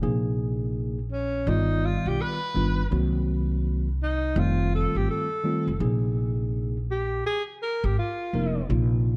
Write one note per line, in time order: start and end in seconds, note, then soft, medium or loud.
0.02 1.43 A#1 medium
0.02 0.97 C3 medium
0.02 0.97 F3 medium
0.02 0.98 A#3 medium
0.02 0.98 D#4 medium
0.02 0.98 G#4 medium
1.12 1.50 C#4 medium
1.47 1.95 G1 loud
1.47 2.37 D#3 medium
1.47 2.37 G3 medium
1.47 2.38 B3 medium
1.47 1.87 D#4 medium
1.47 2.38 F4 medium
1.47 2.38 D5 medium
1.85 2.09 F4 medium
2.06 2.17 B1 medium
2.06 2.23 G4 loud
2.21 2.93 B4 medium
2.55 2.85 G1 medium
2.55 2.81 D#3 medium
2.55 2.81 G3 medium
2.55 2.82 B3 medium
2.55 2.82 D4 medium
2.55 2.82 F4 medium
2.91 4.32 C2 loud
2.91 3.87 D#3 medium
2.91 3.87 F#3 medium
2.91 3.87 A#3 medium
2.91 3.87 C4 medium
2.91 3.88 F#4 medium
4.03 4.41 D#4 medium
4.36 4.84 F1 loud
4.36 5.26 D#3 medium
4.36 5.26 G3 medium
4.36 5.27 A3 medium
4.36 5.27 C4 medium
4.36 5.27 F4 medium
4.36 4.74 F4 loud
4.75 4.98 A4 loud
4.95 5.06 G1 medium
4.95 5.10 G4 loud
5.10 5.78 A4 medium
5.44 5.70 D#3 medium
5.44 5.70 G3 medium
5.44 5.71 A3 medium
5.44 5.71 C4 medium
5.44 5.71 F4 medium
5.67 5.79 F1 medium
5.80 7.21 A#1 loud
5.80 6.76 C3 medium
5.80 6.76 F3 medium
5.80 6.76 A#3 medium
5.80 6.76 D#4 medium
5.80 6.76 G#4 medium
6.91 7.24 G4 medium
7.27 7.43 G#4 loud
7.63 7.87 A#4 loud
7.84 7.95 G#1 loud
7.84 7.98 G4 loud
7.99 8.66 F4 medium
8.33 8.63 F1 medium
8.33 8.60 C3 medium
8.33 8.60 F3 medium
8.33 8.60 A#3 medium
8.33 8.60 D#4 medium
8.33 8.60 A#4 medium
8.69 9.17 A#1 loud
8.69 9.17 C3 medium
8.69 9.17 F3 medium
8.69 9.17 A#3 medium
8.69 9.17 D#4 medium
8.69 9.17 F4 medium